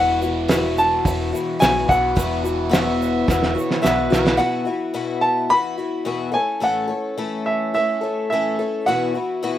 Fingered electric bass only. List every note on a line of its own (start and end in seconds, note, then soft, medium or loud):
0.00 1.01 E1 loud
1.05 1.32 E1 loud
1.62 1.88 B1 medium
1.89 2.15 B1 medium
2.17 3.25 E1 loud
3.28 3.55 E1 medium
3.85 4.11 B1 medium
4.12 4.39 B1 medium